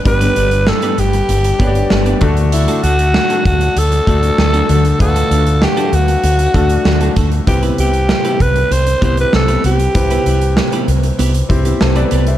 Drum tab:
HH |xxxx-xxxxxxx-xxx|xxxx-xxxxxxx-xxx|xxxx-xxxxxxx-xxx|xxxx-xxxxxxx-xxx|
SD |----o-------o---|----o-------o---|----o-------o---|----o-------o---|
BD |o---------o---o-|------o---o-----|o---------o---o-|o-----o---o-----|

HH |xxxx-xxxxxxx-xxx|
SD |----o-------o---|
BD |o---------o-----|